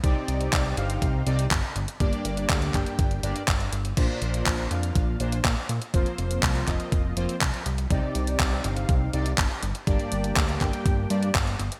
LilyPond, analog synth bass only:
\new Staff \with { instrumentName = "Analog synth bass" } { \clef bass \time 4/4 \key c \dorian \tempo 4 = 122 c,8 c,8 c,8 g,,8 c,8 c,8 g,,8 g,,8 | g,,8 g,,8 d,8 g,,8 g,,8 g,,8 g,,8 g,,8 | bes,,8 bes,,8 bes,,8 f,8 bes,,8 bes,,8 bes,8 bes,8 | f,,8 f,,8 c,8 f,,8 f,,8 f,,8 c,8 c,8 |
c,8 c,8 c,8 g,,8 c,8 c,8 g,,8 g,,8 | g,,8 g,,8 d,8 g,,8 g,,8 g,8 g,,8 g,,8 | }